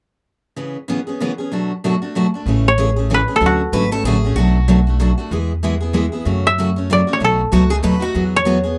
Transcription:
0.56 C#3 E3 B3 C#4 G#4
0.88 C#3 E3 B3 C#4 G#4
1.07 B3 C#4 G#4
1.20 C#3 E3 B3 C#4 G#4
1.38 B3 C#4 G#4
1.52 B2 F#3 A3 D4 F#4
1.84 B2 F#3 A3 D4 F#4
2.02 A3 D4 F#4
2.15 B2 F#3 A3 D4 F#4
2.34 A3 D4 F#4
2.46 A1 C#3 E3 A3 C#4 G#4
2.68 C#5
2.78 C#3 E3 A3 C#4 G#4
2.96 A3 C#4 G#4
3.10 C#3 E3 A3 C#4 G#4
3.14 B4
3.28 A3 C#4 G#4
3.36 A4
3.40 D2 D3 F#3 A3 C#4 F#4
3.46 F#4
3.72 G#1 D3 F#3 A3 C#4 F#4 B4
3.91 A3 C#4 F#4 A4
4.04 A1 D3 F#3 A3 C#4 G#4
4.08 F#4
4.25 A3 C#4 F#4
4.36 B1 B2 F#3 A3 D4 F#4
4.68 B2 F#3 A3 D4 F#4
4.87 A3 D4 F#4
5.00 B2 F#3 A3 D4 F#4
5.18 A3 D4 F#4
5.31 E2 E3 G#3 B3 E4 G#4
5.63 E3 G#3 B3 E4 G#4
5.81 B3 E4 G#4
5.93 E3 G#3 B3 E4 G#4
6.12 B3 E4 G#4
6.25 F#2 C#3 F#3 A3 C#4 F#4
6.47 E5
6.58 C#3 F#3 A3 C#4 F#4
6.76 A3 C#4 F#4
6.90 C#3 F#3 A3 C#4 F#4 D5
7.07 A3 C#4 F#4
7.13 C#5
7.20 B1 B2 F#3 A3 D#4 F#4
7.24 A4
7.52 C#2 B2 F#3 A3 D#4 F#4
7.70 A3 D#4 F#4 G#4
7.83 D#2 B2 F#3 A3 D#4 F#4 B4
8.00 A3 D#4 F#4
8.14 E2 E3 F#3 B3 F#4 G#4
8.36 C#5
8.45 E3 F#3 B3 F#4 G#4
8.63 B3 F#4 G#4

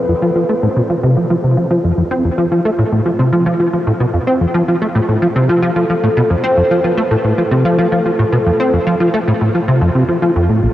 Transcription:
Already playing: B4
0.08 F2
0.22 F3
0.35 F3
0.49 A3
0.62 A2 C5
0.76 B2
0.90 F3
1.03 C3
1.17 F3
1.30 F3
1.44 C3
1.57 F3
1.71 F3
1.84 F2
1.98 F2
2.11 C4
2.25 F2
2.38 F3
2.52 F3
2.65 A3
2.79 A2
2.92 A2
3.06 F3
3.19 C3
3.33 F3
3.46 F3
3.60 F3
3.73 F3
3.87 A2
4.00 B2
4.14 F2
4.27 C4
4.41 F2
4.54 F3
4.68 F3
4.82 A3
4.95 A2
5.08 A2
5.22 F3
5.36 C3
5.49 F3
5.62 F3
5.76 F3 A4
5.90 F3
6.03 A2
6.17 B2
6.30 F2 C5
6.44 C4
6.57 F2
6.71 F3
6.84 F3 B4
6.98 A3
7.11 A2 A4
7.25 A2
7.38 F3
7.51 C3
7.65 F3
7.78 F3
7.92 F3
8.06 F3
8.19 A2
8.33 B2
8.46 F2
8.60 C4
8.73 F2
8.87 F3
9.00 F3
9.14 A3
9.27 A2
9.41 A2
9.54 F3
9.68 C3
9.81 F2
9.95 C3
10.08 F3
10.22 F3
10.36 F2
10.49 A2
10.63 A#1

